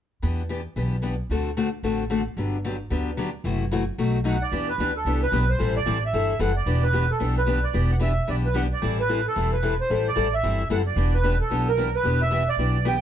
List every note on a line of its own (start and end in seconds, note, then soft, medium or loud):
0.22 0.66 E2 medium
0.22 0.41 E3 soft
0.22 0.41 B3 soft
0.22 0.41 D4 medium
0.22 0.42 G4 medium
0.49 0.60 E3 medium
0.49 0.60 B3 medium
0.49 0.60 D4 medium
0.49 0.60 G4 medium
0.76 1.19 B1 medium
0.76 0.95 E3 soft
0.76 0.95 B3 medium
0.76 0.95 D4 medium
0.76 0.96 G4 soft
1.02 1.13 E3 medium
1.02 1.13 B3 medium
1.02 1.14 D4 medium
1.02 1.14 G4 medium
1.30 1.73 D2 medium
1.30 1.49 D3 medium
1.30 1.49 A3 soft
1.30 1.49 C4 soft
1.30 1.49 F#4 medium
1.30 1.50 A4 medium
1.57 1.67 D3 medium
1.57 1.67 A3 medium
1.57 1.68 C4 medium
1.57 1.68 F#4 medium
1.57 1.68 A4 medium
1.83 2.26 A1 medium
1.83 2.02 D3 soft
1.83 2.02 A3 medium
1.83 2.03 C4 medium
1.83 2.03 F#4 soft
1.83 2.03 A4 medium
2.10 2.21 D3 medium
2.10 2.21 A3 medium
2.10 2.21 C4 medium
2.10 2.21 F#4 medium
2.10 2.21 A4 medium
2.37 2.80 G1 medium
2.37 2.56 D3 soft
2.37 2.56 F#3 medium
2.37 2.56 B3 medium
2.37 2.56 D4 medium
2.37 2.57 G4 medium
2.64 2.75 D3 medium
2.64 2.75 F#3 medium
2.64 2.75 B3 medium
2.64 2.75 D4 medium
2.64 2.76 G4 medium
2.90 3.34 D2 medium
2.90 3.09 D3 medium
2.90 3.10 F#3 medium
2.90 3.10 B3 medium
2.90 3.10 D4 medium
2.90 3.10 G4 soft
3.17 3.28 D3 medium
3.17 3.28 F#3 medium
3.17 3.29 B3 medium
3.17 3.29 D4 medium
3.17 3.29 G4 medium
3.44 3.87 F#1 medium
3.44 3.63 C3 medium
3.44 3.63 E3 soft
3.44 3.64 A3 medium
3.44 3.64 E4 medium
3.44 3.64 F#4 medium
3.71 3.82 C3 medium
3.71 3.82 E3 medium
3.71 3.83 A3 medium
3.71 3.83 E4 medium
3.71 3.83 F#4 medium
3.98 4.41 B1 medium
3.98 4.17 B2 medium
3.98 4.17 F#3 medium
3.98 4.17 A3 medium
3.98 4.18 D#4 medium
3.98 4.18 F#4 medium
4.24 4.35 B2 medium
4.24 4.36 F#3 medium
4.24 4.36 A3 medium
4.24 4.36 D#4 medium
4.24 4.36 F#4 medium
4.24 4.43 F#5 medium
4.42 4.69 D5 medium
4.52 4.73 E2 medium
4.52 4.71 E3 medium
4.52 4.71 B3 medium
4.52 4.71 D4 medium
4.52 4.71 G4 medium
4.69 4.94 B4 medium
4.78 5.01 D2 medium
4.78 4.90 E3 medium
4.78 4.90 B3 medium
4.78 4.90 D4 medium
4.78 4.91 G4 medium
4.97 5.21 A4 medium
5.05 5.28 C2 medium
5.05 5.25 E3 medium
5.05 5.25 B3 medium
5.05 5.25 D4 medium
5.05 5.25 G4 medium
5.23 5.50 B4 medium
5.32 5.55 B1 medium
5.32 5.43 E3 medium
5.32 5.43 B3 medium
5.32 5.43 D4 medium
5.32 5.44 G4 medium
5.49 5.74 C5 medium
5.59 5.81 A1 medium
5.59 5.78 E3 medium
5.59 5.78 G3 medium
5.59 5.78 C4 medium
5.59 5.78 E4 medium
5.59 5.78 A4 medium
5.76 6.03 D5 medium
5.86 6.09 A1 medium
5.86 5.97 E3 medium
5.86 5.97 G3 medium
5.86 5.97 C4 medium
5.86 5.97 E4 medium
5.86 5.97 A4 medium
6.06 6.40 E5 medium
6.13 6.36 G1 medium
6.13 6.32 E3 medium
6.13 6.32 G3 medium
6.13 6.32 C4 medium
6.13 6.32 E4 medium
6.13 6.33 A4 medium
6.39 6.63 F#1 medium
6.39 6.50 E3 medium
6.39 6.51 G3 medium
6.39 6.51 C4 medium
6.39 6.51 E4 medium
6.39 6.51 A4 medium
6.39 6.55 F#5 medium
6.56 6.84 D5 medium
6.66 7.09 E1 medium
6.66 6.85 E3 medium
6.66 6.85 B3 medium
6.66 6.86 D4 medium
6.66 6.86 G4 medium
6.83 7.11 B4 medium
6.93 7.04 E3 medium
6.93 7.04 B3 medium
6.93 7.04 D4 medium
6.93 7.05 G4 medium
7.11 7.35 A4 medium
7.20 7.64 B1 medium
7.20 7.39 E3 medium
7.20 7.39 B3 medium
7.20 7.39 D4 medium
7.20 7.39 G4 medium
7.38 7.65 B4 medium
7.46 7.57 E3 medium
7.46 7.58 B3 medium
7.46 7.58 D4 medium
7.46 7.58 G4 medium
7.64 7.91 D5 medium
7.73 8.17 E1 medium
7.73 7.92 E3 soft
7.73 7.93 B3 medium
7.73 7.93 D4 medium
7.73 7.93 G4 medium
7.92 7.96 F#5 medium
7.99 8.11 E3 medium
7.99 8.11 B3 medium
7.99 8.12 D4 medium
7.99 8.12 G4 medium
7.99 8.29 E5 medium
8.27 8.71 B1 medium
8.27 8.46 E3 medium
8.27 8.47 B3 medium
8.27 8.47 D4 soft
8.27 8.47 G4 medium
8.27 8.36 D5 medium
8.46 8.56 B4 medium
8.54 8.65 E3 medium
8.54 8.65 B3 medium
8.54 8.66 D4 medium
8.54 8.66 G4 medium
8.54 8.63 F#5 medium
8.73 8.97 D5 medium
8.82 9.25 A1 medium
8.82 9.00 E3 medium
8.82 9.01 G3 medium
8.82 9.00 C4 medium
8.82 9.01 E4 medium
8.82 9.01 A4 medium
9.00 9.26 B4 medium
9.09 9.19 E3 medium
9.09 9.20 G3 medium
9.09 9.20 C4 medium
9.09 9.20 E4 medium
9.09 9.20 A4 medium
9.27 9.51 A4 medium
9.36 9.79 E1 medium
9.36 9.54 E3 medium
9.36 9.55 G3 medium
9.36 9.55 C4 medium
9.36 9.55 E4 medium
9.36 9.55 A4 medium
9.53 9.77 B4 medium
9.63 9.73 E3 medium
9.63 9.73 G3 medium
9.63 9.73 C4 medium
9.63 9.74 E4 medium
9.63 9.74 A4 medium
9.81 10.07 C5 medium
9.90 10.11 A1 medium
9.90 10.08 E3 medium
9.90 10.08 G3 soft
9.90 10.08 C4 medium
9.90 10.09 E4 medium
9.90 10.09 A4 medium
10.08 10.34 D5 medium
10.16 10.39 A1 medium
10.16 10.26 E3 medium
10.16 10.26 G3 medium
10.16 10.27 C4 medium
10.16 10.27 E4 medium
10.16 10.27 A4 medium
10.34 10.68 E5 medium
10.43 10.66 G1 medium
10.43 10.62 E3 medium
10.43 10.62 G3 medium
10.43 10.62 C4 medium
10.43 10.62 E4 medium
10.43 10.62 A4 medium
10.70 10.93 F#1 medium
10.70 10.80 E3 medium
10.70 10.80 G3 medium
10.70 10.81 C4 medium
10.70 10.81 E4 medium
10.70 10.81 A4 medium
10.70 10.79 F#5 medium
10.87 11.14 D5 medium
10.96 11.39 E1 medium
10.96 11.15 E3 medium
10.96 11.16 B3 medium
10.96 11.16 D4 medium
10.96 11.16 G4 medium
11.14 11.38 B4 medium
11.23 11.34 E3 medium
11.23 11.34 B3 medium
11.23 11.34 D4 medium
11.23 11.34 G4 medium
11.41 11.68 A4 medium
11.50 11.93 B1 medium
11.50 11.69 E3 medium
11.50 11.70 B3 medium
11.50 11.70 D4 medium
11.50 11.69 G4 medium
11.69 11.95 A#4 medium
11.77 11.88 E3 medium
11.77 11.88 B3 medium
11.77 11.88 D4 medium
11.77 11.88 G4 medium
11.95 12.22 B4 medium
12.04 12.47 E1 medium
12.04 12.23 E3 medium
12.04 12.23 B3 medium
12.04 12.23 D4 medium
12.04 12.23 G4 medium
12.22 12.48 E5 loud
12.31 12.41 E3 medium
12.31 12.42 B3 medium
12.31 12.42 D4 medium
12.31 12.42 G4 medium
12.49 12.87 D5 medium
12.57 13.00 B1 medium
12.57 12.77 E3 medium
12.57 12.77 B3 medium
12.57 12.77 D4 medium
12.57 12.77 G4 medium
12.85 12.95 E3 medium
12.85 12.95 B3 medium
12.85 12.96 D4 medium
12.85 12.96 G4 medium
12.85 13.01 G5 medium